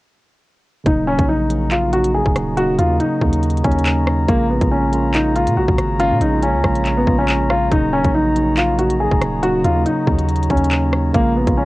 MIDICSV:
0, 0, Header, 1, 6, 480
1, 0, Start_track
1, 0, Key_signature, -6, "minor"
1, 0, Tempo, 428571
1, 960, Time_signature, 4, 2, 24, 8
1, 13048, End_track
2, 0, Start_track
2, 0, Title_t, "Brass ensemble"
2, 0, Program_c, 0, 61
2, 960, Note_on_c, 0, 82, 92
2, 961, Note_on_c, 0, 66, 83
2, 961, Note_on_c, 0, 73, 75
2, 961, Note_on_c, 0, 75, 76
2, 4762, Note_off_c, 0, 66, 0
2, 4762, Note_off_c, 0, 75, 0
2, 4800, Note_on_c, 0, 68, 85
2, 4801, Note_on_c, 0, 77, 76
2, 8602, Note_off_c, 0, 68, 0
2, 8602, Note_off_c, 0, 77, 0
2, 8641, Note_on_c, 0, 66, 86
2, 8641, Note_on_c, 0, 75, 75
2, 12435, Note_off_c, 0, 82, 0
2, 12436, Note_off_c, 0, 73, 0
2, 12442, Note_off_c, 0, 66, 0
2, 12442, Note_off_c, 0, 75, 0
2, 12481, Note_on_c, 0, 73, 78
2, 12481, Note_on_c, 0, 77, 76
2, 12481, Note_on_c, 0, 82, 89
2, 12482, Note_on_c, 0, 68, 85
2, 13048, Note_off_c, 0, 68, 0
2, 13048, Note_off_c, 0, 73, 0
2, 13048, Note_off_c, 0, 77, 0
2, 13048, Note_off_c, 0, 82, 0
2, 13048, End_track
3, 0, Start_track
3, 0, Title_t, "Grand piano"
3, 0, Program_c, 1, 0
3, 960, Note_on_c, 1, 63, 82
3, 1143, Note_off_c, 1, 63, 0
3, 1200, Note_on_c, 1, 61, 88
3, 1383, Note_off_c, 1, 61, 0
3, 1441, Note_on_c, 1, 63, 81
3, 1892, Note_off_c, 1, 63, 0
3, 1920, Note_on_c, 1, 65, 82
3, 2103, Note_off_c, 1, 65, 0
3, 2161, Note_on_c, 1, 66, 82
3, 2343, Note_off_c, 1, 66, 0
3, 2401, Note_on_c, 1, 68, 71
3, 2852, Note_off_c, 1, 68, 0
3, 2879, Note_on_c, 1, 66, 98
3, 3062, Note_off_c, 1, 66, 0
3, 3120, Note_on_c, 1, 65, 84
3, 3303, Note_off_c, 1, 65, 0
3, 3359, Note_on_c, 1, 63, 77
3, 3811, Note_off_c, 1, 63, 0
3, 4080, Note_on_c, 1, 61, 73
3, 4757, Note_off_c, 1, 61, 0
3, 4800, Note_on_c, 1, 58, 100
3, 4983, Note_off_c, 1, 58, 0
3, 5040, Note_on_c, 1, 59, 77
3, 5223, Note_off_c, 1, 59, 0
3, 5280, Note_on_c, 1, 61, 76
3, 5732, Note_off_c, 1, 61, 0
3, 5761, Note_on_c, 1, 63, 82
3, 5944, Note_off_c, 1, 63, 0
3, 6002, Note_on_c, 1, 65, 84
3, 6184, Note_off_c, 1, 65, 0
3, 6241, Note_on_c, 1, 66, 78
3, 6692, Note_off_c, 1, 66, 0
3, 6720, Note_on_c, 1, 65, 116
3, 6903, Note_off_c, 1, 65, 0
3, 6962, Note_on_c, 1, 63, 86
3, 7144, Note_off_c, 1, 63, 0
3, 7203, Note_on_c, 1, 61, 87
3, 7772, Note_off_c, 1, 61, 0
3, 7808, Note_on_c, 1, 59, 85
3, 7991, Note_off_c, 1, 59, 0
3, 8048, Note_on_c, 1, 61, 80
3, 8380, Note_off_c, 1, 61, 0
3, 8400, Note_on_c, 1, 65, 90
3, 8583, Note_off_c, 1, 65, 0
3, 8640, Note_on_c, 1, 63, 85
3, 8823, Note_off_c, 1, 63, 0
3, 8880, Note_on_c, 1, 61, 88
3, 9063, Note_off_c, 1, 61, 0
3, 9121, Note_on_c, 1, 63, 81
3, 9572, Note_off_c, 1, 63, 0
3, 9601, Note_on_c, 1, 65, 82
3, 9784, Note_off_c, 1, 65, 0
3, 9841, Note_on_c, 1, 66, 84
3, 10023, Note_off_c, 1, 66, 0
3, 10081, Note_on_c, 1, 68, 73
3, 10532, Note_off_c, 1, 68, 0
3, 10558, Note_on_c, 1, 66, 99
3, 10742, Note_off_c, 1, 66, 0
3, 10801, Note_on_c, 1, 65, 83
3, 10983, Note_off_c, 1, 65, 0
3, 11040, Note_on_c, 1, 63, 77
3, 11491, Note_off_c, 1, 63, 0
3, 11759, Note_on_c, 1, 61, 72
3, 12436, Note_off_c, 1, 61, 0
3, 12480, Note_on_c, 1, 58, 97
3, 12663, Note_off_c, 1, 58, 0
3, 12722, Note_on_c, 1, 59, 75
3, 12904, Note_off_c, 1, 59, 0
3, 12961, Note_on_c, 1, 61, 74
3, 13048, Note_off_c, 1, 61, 0
3, 13048, End_track
4, 0, Start_track
4, 0, Title_t, "Tine electric piano"
4, 0, Program_c, 2, 4
4, 940, Note_on_c, 2, 49, 99
4, 951, Note_on_c, 2, 54, 85
4, 961, Note_on_c, 2, 58, 92
4, 973, Note_on_c, 2, 63, 117
4, 1160, Control_c, 2, 64, 127
4, 1269, Note_off_c, 2, 49, 0
4, 1275, Note_off_c, 2, 54, 0
4, 1280, Note_off_c, 2, 58, 0
4, 1285, Note_off_c, 2, 63, 0
4, 1306, Note_on_c, 2, 49, 72
4, 1316, Note_on_c, 2, 54, 66
4, 1327, Note_on_c, 2, 58, 66
4, 1338, Note_on_c, 2, 63, 80
4, 1627, Note_off_c, 2, 49, 0
4, 1632, Note_off_c, 2, 54, 0
4, 1638, Note_off_c, 2, 58, 0
4, 1643, Note_off_c, 2, 63, 0
4, 1667, Note_on_c, 2, 49, 77
4, 1678, Note_on_c, 2, 54, 75
4, 1689, Note_on_c, 2, 58, 70
4, 1700, Note_on_c, 2, 63, 89
4, 2097, Note_off_c, 2, 49, 0
4, 2102, Note_off_c, 2, 54, 0
4, 2108, Note_off_c, 2, 58, 0
4, 2113, Note_off_c, 2, 63, 0
4, 2141, Note_on_c, 2, 49, 79
4, 2152, Note_on_c, 2, 54, 68
4, 2163, Note_on_c, 2, 58, 75
4, 2174, Note_on_c, 2, 63, 81
4, 2785, Note_off_c, 2, 49, 0
4, 2791, Note_off_c, 2, 54, 0
4, 2796, Note_off_c, 2, 58, 0
4, 2802, Note_off_c, 2, 63, 0
4, 2867, Note_on_c, 2, 49, 96
4, 2878, Note_on_c, 2, 54, 88
4, 2889, Note_on_c, 2, 58, 90
4, 2900, Note_on_c, 2, 63, 107
4, 3193, Note_off_c, 2, 49, 0
4, 3198, Note_off_c, 2, 54, 0
4, 3204, Note_off_c, 2, 58, 0
4, 3209, Note_off_c, 2, 63, 0
4, 3231, Note_on_c, 2, 49, 77
4, 3241, Note_on_c, 2, 54, 65
4, 3252, Note_on_c, 2, 58, 71
4, 3263, Note_on_c, 2, 63, 80
4, 3549, Note_off_c, 2, 49, 0
4, 3554, Note_off_c, 2, 54, 0
4, 3560, Note_off_c, 2, 58, 0
4, 3565, Note_off_c, 2, 63, 0
4, 3579, Note_on_c, 2, 49, 83
4, 3590, Note_on_c, 2, 54, 74
4, 3600, Note_on_c, 2, 58, 75
4, 3611, Note_on_c, 2, 63, 91
4, 4013, Note_off_c, 2, 49, 0
4, 4018, Note_off_c, 2, 54, 0
4, 4023, Note_off_c, 2, 58, 0
4, 4029, Note_off_c, 2, 63, 0
4, 4061, Note_on_c, 2, 49, 81
4, 4072, Note_on_c, 2, 54, 75
4, 4083, Note_on_c, 2, 58, 72
4, 4093, Note_on_c, 2, 63, 87
4, 4705, Note_off_c, 2, 49, 0
4, 4711, Note_off_c, 2, 54, 0
4, 4716, Note_off_c, 2, 58, 0
4, 4721, Note_off_c, 2, 63, 0
4, 4785, Note_on_c, 2, 49, 107
4, 4796, Note_on_c, 2, 56, 94
4, 4807, Note_on_c, 2, 58, 96
4, 4817, Control_c, 2, 64, 0
4, 4817, Note_on_c, 2, 65, 110
4, 5035, Control_c, 2, 64, 127
4, 5112, Note_off_c, 2, 49, 0
4, 5117, Note_off_c, 2, 56, 0
4, 5123, Note_off_c, 2, 58, 0
4, 5128, Note_off_c, 2, 65, 0
4, 5150, Note_on_c, 2, 49, 72
4, 5161, Note_on_c, 2, 56, 67
4, 5172, Note_on_c, 2, 58, 70
4, 5182, Note_on_c, 2, 65, 83
4, 5469, Note_off_c, 2, 49, 0
4, 5474, Note_off_c, 2, 56, 0
4, 5480, Note_off_c, 2, 58, 0
4, 5485, Note_off_c, 2, 65, 0
4, 5502, Note_on_c, 2, 49, 80
4, 5513, Note_on_c, 2, 56, 74
4, 5523, Note_on_c, 2, 58, 81
4, 5534, Note_on_c, 2, 65, 88
4, 5934, Note_off_c, 2, 49, 0
4, 5939, Note_off_c, 2, 56, 0
4, 5945, Note_off_c, 2, 58, 0
4, 5950, Note_off_c, 2, 65, 0
4, 5984, Note_on_c, 2, 49, 76
4, 5995, Note_on_c, 2, 56, 74
4, 6006, Note_on_c, 2, 58, 68
4, 6016, Note_on_c, 2, 77, 88
4, 6627, Note_off_c, 2, 49, 0
4, 6632, Note_off_c, 2, 56, 0
4, 6638, Note_off_c, 2, 58, 0
4, 6643, Note_off_c, 2, 77, 0
4, 6709, Note_on_c, 2, 49, 101
4, 6720, Note_on_c, 2, 56, 96
4, 6731, Note_on_c, 2, 58, 91
4, 6741, Note_on_c, 2, 61, 117
4, 7034, Note_off_c, 2, 49, 0
4, 7039, Note_off_c, 2, 56, 0
4, 7044, Note_off_c, 2, 58, 0
4, 7050, Note_off_c, 2, 61, 0
4, 7069, Note_on_c, 2, 49, 70
4, 7080, Note_on_c, 2, 56, 67
4, 7091, Note_on_c, 2, 58, 67
4, 7102, Note_on_c, 2, 65, 85
4, 7389, Note_off_c, 2, 49, 0
4, 7394, Note_off_c, 2, 56, 0
4, 7399, Note_off_c, 2, 58, 0
4, 7405, Note_off_c, 2, 65, 0
4, 7423, Note_on_c, 2, 49, 80
4, 7434, Note_on_c, 2, 56, 69
4, 7445, Note_on_c, 2, 58, 74
4, 7456, Note_on_c, 2, 65, 87
4, 7855, Note_off_c, 2, 49, 0
4, 7860, Note_off_c, 2, 56, 0
4, 7866, Note_off_c, 2, 58, 0
4, 7871, Note_off_c, 2, 65, 0
4, 7904, Note_on_c, 2, 49, 78
4, 7914, Note_on_c, 2, 56, 79
4, 7925, Note_on_c, 2, 58, 70
4, 7936, Note_on_c, 2, 65, 90
4, 8547, Note_off_c, 2, 49, 0
4, 8552, Note_off_c, 2, 56, 0
4, 8557, Note_off_c, 2, 58, 0
4, 8563, Note_off_c, 2, 65, 0
4, 8620, Note_on_c, 2, 49, 102
4, 8631, Note_on_c, 2, 54, 84
4, 8641, Note_on_c, 2, 58, 92
4, 8652, Note_on_c, 2, 63, 117
4, 8654, Control_c, 2, 64, 0
4, 8821, Control_c, 2, 64, 127
4, 8949, Note_off_c, 2, 49, 0
4, 8955, Note_off_c, 2, 54, 0
4, 8960, Note_off_c, 2, 58, 0
4, 8965, Note_off_c, 2, 63, 0
4, 8986, Note_on_c, 2, 49, 69
4, 8996, Note_on_c, 2, 54, 67
4, 9007, Note_on_c, 2, 58, 67
4, 9018, Note_on_c, 2, 63, 80
4, 9307, Note_off_c, 2, 49, 0
4, 9312, Note_off_c, 2, 54, 0
4, 9317, Note_off_c, 2, 58, 0
4, 9323, Note_off_c, 2, 63, 0
4, 9347, Note_on_c, 2, 49, 74
4, 9358, Note_on_c, 2, 54, 74
4, 9369, Note_on_c, 2, 58, 72
4, 9380, Note_on_c, 2, 63, 90
4, 9777, Note_off_c, 2, 49, 0
4, 9782, Note_off_c, 2, 54, 0
4, 9788, Note_off_c, 2, 58, 0
4, 9793, Note_off_c, 2, 63, 0
4, 9821, Note_on_c, 2, 49, 82
4, 9832, Note_on_c, 2, 54, 68
4, 9843, Note_on_c, 2, 58, 77
4, 9854, Note_on_c, 2, 63, 84
4, 10465, Note_off_c, 2, 49, 0
4, 10471, Note_off_c, 2, 54, 0
4, 10476, Note_off_c, 2, 58, 0
4, 10482, Note_off_c, 2, 63, 0
4, 10547, Note_on_c, 2, 49, 96
4, 10558, Note_on_c, 2, 54, 88
4, 10569, Note_on_c, 2, 58, 88
4, 10580, Note_on_c, 2, 63, 108
4, 10873, Note_off_c, 2, 49, 0
4, 10878, Note_off_c, 2, 54, 0
4, 10884, Note_off_c, 2, 58, 0
4, 10889, Note_off_c, 2, 63, 0
4, 10911, Note_on_c, 2, 49, 75
4, 10922, Note_on_c, 2, 54, 69
4, 10933, Note_on_c, 2, 58, 73
4, 10943, Note_on_c, 2, 63, 80
4, 11229, Note_off_c, 2, 49, 0
4, 11235, Note_off_c, 2, 54, 0
4, 11240, Note_off_c, 2, 58, 0
4, 11246, Note_off_c, 2, 63, 0
4, 11259, Note_on_c, 2, 49, 83
4, 11270, Note_on_c, 2, 54, 75
4, 11281, Note_on_c, 2, 58, 71
4, 11292, Note_on_c, 2, 63, 94
4, 11693, Note_off_c, 2, 49, 0
4, 11698, Note_off_c, 2, 54, 0
4, 11704, Note_off_c, 2, 58, 0
4, 11709, Note_off_c, 2, 63, 0
4, 11742, Note_on_c, 2, 49, 80
4, 11753, Note_on_c, 2, 54, 72
4, 11763, Note_on_c, 2, 58, 73
4, 11774, Note_on_c, 2, 63, 87
4, 12385, Note_off_c, 2, 49, 0
4, 12391, Note_off_c, 2, 54, 0
4, 12396, Note_off_c, 2, 58, 0
4, 12402, Note_off_c, 2, 63, 0
4, 12465, Note_on_c, 2, 49, 106
4, 12476, Note_on_c, 2, 56, 93
4, 12487, Note_on_c, 2, 58, 95
4, 12496, Control_c, 2, 64, 0
4, 12498, Note_on_c, 2, 65, 110
4, 12693, Control_c, 2, 64, 127
4, 12792, Note_off_c, 2, 49, 0
4, 12797, Note_off_c, 2, 56, 0
4, 12803, Note_off_c, 2, 58, 0
4, 12808, Note_off_c, 2, 65, 0
4, 12831, Note_on_c, 2, 49, 73
4, 12841, Note_on_c, 2, 56, 68
4, 12852, Note_on_c, 2, 58, 67
4, 12863, Note_on_c, 2, 65, 78
4, 13048, Note_off_c, 2, 49, 0
4, 13048, Note_off_c, 2, 56, 0
4, 13048, Note_off_c, 2, 58, 0
4, 13048, Note_off_c, 2, 65, 0
4, 13048, End_track
5, 0, Start_track
5, 0, Title_t, "808-style bass"
5, 0, Program_c, 3, 38
5, 961, Note_on_c, 3, 27, 112
5, 1313, Note_off_c, 3, 27, 0
5, 1328, Note_on_c, 3, 34, 105
5, 2483, Note_off_c, 3, 34, 0
5, 2527, Note_on_c, 3, 27, 103
5, 2636, Note_off_c, 3, 27, 0
5, 2641, Note_on_c, 3, 27, 105
5, 3101, Note_off_c, 3, 27, 0
5, 3120, Note_on_c, 3, 39, 109
5, 3351, Note_off_c, 3, 39, 0
5, 3600, Note_on_c, 3, 39, 104
5, 4061, Note_off_c, 3, 39, 0
5, 4082, Note_on_c, 3, 39, 110
5, 4772, Note_off_c, 3, 39, 0
5, 4801, Note_on_c, 3, 34, 116
5, 5153, Note_off_c, 3, 34, 0
5, 5168, Note_on_c, 3, 34, 106
5, 6128, Note_on_c, 3, 46, 103
5, 6145, Note_off_c, 3, 34, 0
5, 6241, Note_on_c, 3, 34, 104
5, 6258, Note_off_c, 3, 46, 0
5, 6362, Note_off_c, 3, 34, 0
5, 6367, Note_on_c, 3, 34, 105
5, 6476, Note_off_c, 3, 34, 0
5, 6481, Note_on_c, 3, 32, 109
5, 6848, Note_on_c, 3, 46, 96
5, 6865, Note_off_c, 3, 32, 0
5, 6955, Note_off_c, 3, 46, 0
5, 6960, Note_on_c, 3, 34, 106
5, 7328, Note_on_c, 3, 37, 105
5, 7345, Note_off_c, 3, 34, 0
5, 7435, Note_off_c, 3, 37, 0
5, 7440, Note_on_c, 3, 34, 107
5, 7901, Note_off_c, 3, 34, 0
5, 7922, Note_on_c, 3, 34, 107
5, 8612, Note_off_c, 3, 34, 0
5, 8640, Note_on_c, 3, 27, 110
5, 8993, Note_off_c, 3, 27, 0
5, 9008, Note_on_c, 3, 34, 104
5, 10163, Note_off_c, 3, 34, 0
5, 10207, Note_on_c, 3, 27, 101
5, 10316, Note_off_c, 3, 27, 0
5, 10320, Note_on_c, 3, 27, 105
5, 10781, Note_off_c, 3, 27, 0
5, 10800, Note_on_c, 3, 39, 105
5, 11031, Note_off_c, 3, 39, 0
5, 11280, Note_on_c, 3, 39, 103
5, 11741, Note_off_c, 3, 39, 0
5, 11762, Note_on_c, 3, 39, 108
5, 12452, Note_off_c, 3, 39, 0
5, 12481, Note_on_c, 3, 34, 113
5, 12833, Note_off_c, 3, 34, 0
5, 12848, Note_on_c, 3, 34, 113
5, 13048, Note_off_c, 3, 34, 0
5, 13048, End_track
6, 0, Start_track
6, 0, Title_t, "Drums"
6, 960, Note_on_c, 9, 42, 72
6, 961, Note_on_c, 9, 36, 118
6, 1072, Note_off_c, 9, 42, 0
6, 1073, Note_off_c, 9, 36, 0
6, 1327, Note_on_c, 9, 42, 75
6, 1328, Note_on_c, 9, 36, 103
6, 1439, Note_off_c, 9, 42, 0
6, 1440, Note_off_c, 9, 36, 0
6, 1680, Note_on_c, 9, 42, 84
6, 1792, Note_off_c, 9, 42, 0
6, 1920, Note_on_c, 9, 39, 104
6, 1920, Note_on_c, 9, 42, 74
6, 2032, Note_off_c, 9, 39, 0
6, 2032, Note_off_c, 9, 42, 0
6, 2160, Note_on_c, 9, 42, 82
6, 2272, Note_off_c, 9, 42, 0
6, 2288, Note_on_c, 9, 42, 98
6, 2400, Note_off_c, 9, 42, 0
6, 2527, Note_on_c, 9, 36, 91
6, 2639, Note_off_c, 9, 36, 0
6, 2640, Note_on_c, 9, 37, 100
6, 2640, Note_on_c, 9, 42, 88
6, 2752, Note_off_c, 9, 37, 0
6, 2752, Note_off_c, 9, 42, 0
6, 2881, Note_on_c, 9, 42, 76
6, 2993, Note_off_c, 9, 42, 0
6, 3120, Note_on_c, 9, 42, 82
6, 3232, Note_off_c, 9, 42, 0
6, 3361, Note_on_c, 9, 42, 76
6, 3473, Note_off_c, 9, 42, 0
6, 3600, Note_on_c, 9, 36, 90
6, 3712, Note_off_c, 9, 36, 0
6, 3727, Note_on_c, 9, 42, 83
6, 3839, Note_off_c, 9, 42, 0
6, 3840, Note_on_c, 9, 42, 59
6, 3920, Note_off_c, 9, 42, 0
6, 3920, Note_on_c, 9, 42, 55
6, 4000, Note_off_c, 9, 42, 0
6, 4000, Note_on_c, 9, 42, 59
6, 4080, Note_off_c, 9, 42, 0
6, 4080, Note_on_c, 9, 42, 61
6, 4081, Note_on_c, 9, 36, 102
6, 4161, Note_off_c, 9, 42, 0
6, 4161, Note_on_c, 9, 42, 63
6, 4193, Note_off_c, 9, 36, 0
6, 4241, Note_off_c, 9, 42, 0
6, 4241, Note_on_c, 9, 42, 59
6, 4320, Note_off_c, 9, 42, 0
6, 4320, Note_on_c, 9, 42, 98
6, 4321, Note_on_c, 9, 39, 115
6, 4432, Note_off_c, 9, 42, 0
6, 4433, Note_off_c, 9, 39, 0
6, 4560, Note_on_c, 9, 37, 102
6, 4672, Note_off_c, 9, 37, 0
6, 4801, Note_on_c, 9, 36, 119
6, 4801, Note_on_c, 9, 42, 75
6, 4913, Note_off_c, 9, 36, 0
6, 4913, Note_off_c, 9, 42, 0
6, 5167, Note_on_c, 9, 42, 73
6, 5168, Note_on_c, 9, 36, 99
6, 5279, Note_off_c, 9, 42, 0
6, 5280, Note_off_c, 9, 36, 0
6, 5520, Note_on_c, 9, 42, 81
6, 5632, Note_off_c, 9, 42, 0
6, 5760, Note_on_c, 9, 42, 71
6, 5761, Note_on_c, 9, 39, 103
6, 5872, Note_off_c, 9, 42, 0
6, 5873, Note_off_c, 9, 39, 0
6, 6000, Note_on_c, 9, 42, 83
6, 6112, Note_off_c, 9, 42, 0
6, 6128, Note_on_c, 9, 42, 102
6, 6240, Note_off_c, 9, 42, 0
6, 6367, Note_on_c, 9, 36, 94
6, 6479, Note_off_c, 9, 36, 0
6, 6480, Note_on_c, 9, 37, 98
6, 6480, Note_on_c, 9, 42, 87
6, 6592, Note_off_c, 9, 37, 0
6, 6592, Note_off_c, 9, 42, 0
6, 6720, Note_on_c, 9, 42, 75
6, 6832, Note_off_c, 9, 42, 0
6, 6960, Note_on_c, 9, 42, 85
6, 7072, Note_off_c, 9, 42, 0
6, 7200, Note_on_c, 9, 42, 78
6, 7312, Note_off_c, 9, 42, 0
6, 7440, Note_on_c, 9, 36, 91
6, 7440, Note_on_c, 9, 37, 106
6, 7552, Note_off_c, 9, 36, 0
6, 7552, Note_off_c, 9, 37, 0
6, 7567, Note_on_c, 9, 42, 87
6, 7679, Note_off_c, 9, 42, 0
6, 7680, Note_on_c, 9, 42, 66
6, 7681, Note_on_c, 9, 39, 63
6, 7792, Note_off_c, 9, 42, 0
6, 7793, Note_off_c, 9, 39, 0
6, 7922, Note_on_c, 9, 36, 97
6, 8034, Note_off_c, 9, 36, 0
6, 8160, Note_on_c, 9, 42, 91
6, 8161, Note_on_c, 9, 39, 115
6, 8272, Note_off_c, 9, 42, 0
6, 8273, Note_off_c, 9, 39, 0
6, 8400, Note_on_c, 9, 37, 100
6, 8512, Note_off_c, 9, 37, 0
6, 8640, Note_on_c, 9, 42, 75
6, 8641, Note_on_c, 9, 36, 116
6, 8752, Note_off_c, 9, 42, 0
6, 8753, Note_off_c, 9, 36, 0
6, 9007, Note_on_c, 9, 42, 71
6, 9008, Note_on_c, 9, 36, 102
6, 9119, Note_off_c, 9, 42, 0
6, 9120, Note_off_c, 9, 36, 0
6, 9360, Note_on_c, 9, 42, 83
6, 9472, Note_off_c, 9, 42, 0
6, 9600, Note_on_c, 9, 39, 105
6, 9600, Note_on_c, 9, 42, 72
6, 9712, Note_off_c, 9, 39, 0
6, 9712, Note_off_c, 9, 42, 0
6, 9840, Note_on_c, 9, 42, 83
6, 9952, Note_off_c, 9, 42, 0
6, 9968, Note_on_c, 9, 42, 101
6, 10080, Note_off_c, 9, 42, 0
6, 10207, Note_on_c, 9, 36, 93
6, 10319, Note_off_c, 9, 36, 0
6, 10320, Note_on_c, 9, 37, 103
6, 10320, Note_on_c, 9, 42, 88
6, 10432, Note_off_c, 9, 37, 0
6, 10432, Note_off_c, 9, 42, 0
6, 10560, Note_on_c, 9, 42, 74
6, 10672, Note_off_c, 9, 42, 0
6, 10800, Note_on_c, 9, 42, 85
6, 10912, Note_off_c, 9, 42, 0
6, 11041, Note_on_c, 9, 42, 76
6, 11153, Note_off_c, 9, 42, 0
6, 11280, Note_on_c, 9, 36, 92
6, 11392, Note_off_c, 9, 36, 0
6, 11408, Note_on_c, 9, 42, 82
6, 11520, Note_off_c, 9, 42, 0
6, 11520, Note_on_c, 9, 42, 57
6, 11601, Note_off_c, 9, 42, 0
6, 11601, Note_on_c, 9, 42, 55
6, 11680, Note_off_c, 9, 42, 0
6, 11680, Note_on_c, 9, 42, 59
6, 11760, Note_off_c, 9, 42, 0
6, 11760, Note_on_c, 9, 42, 60
6, 11761, Note_on_c, 9, 36, 99
6, 11841, Note_off_c, 9, 42, 0
6, 11841, Note_on_c, 9, 42, 61
6, 11873, Note_off_c, 9, 36, 0
6, 11921, Note_off_c, 9, 42, 0
6, 11921, Note_on_c, 9, 42, 61
6, 12000, Note_off_c, 9, 42, 0
6, 12000, Note_on_c, 9, 42, 95
6, 12001, Note_on_c, 9, 39, 114
6, 12112, Note_off_c, 9, 42, 0
6, 12113, Note_off_c, 9, 39, 0
6, 12240, Note_on_c, 9, 37, 102
6, 12352, Note_off_c, 9, 37, 0
6, 12480, Note_on_c, 9, 42, 73
6, 12481, Note_on_c, 9, 36, 118
6, 12592, Note_off_c, 9, 42, 0
6, 12593, Note_off_c, 9, 36, 0
6, 12848, Note_on_c, 9, 36, 97
6, 12848, Note_on_c, 9, 42, 73
6, 12960, Note_off_c, 9, 36, 0
6, 12960, Note_off_c, 9, 42, 0
6, 13048, End_track
0, 0, End_of_file